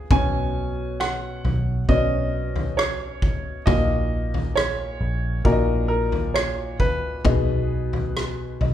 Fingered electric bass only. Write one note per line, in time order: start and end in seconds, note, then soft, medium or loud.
0.11 1.41 B1 medium
1.45 1.86 B1 loud
1.89 3.63 B1 medium
3.67 4.97 A#1 medium
5.01 5.42 A#1 loud
5.45 7.21 A#1 medium
7.25 8.57 B1 medium
8.61 8.74 B1 loud